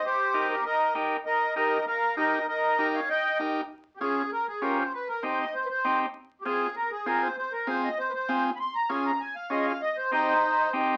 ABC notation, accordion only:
X:1
M:4/4
L:1/8
Q:1/4=196
K:Fm
V:1 name="Accordion"
[Gc]3 [GB] [Be]2 z2 | [Be]2 [Be]2 [Bf]2 [Be]2 | [Be]3 [df] [eg]2 z2 | z2 [GA]2 B A B c |
=B _B c e c [=Bc]2 z | z2 [GA]2 B A B c | c B c e c [=Bc]2 z | [=bc'] _b a b a f e f |
e c [Ec]4 z2 |]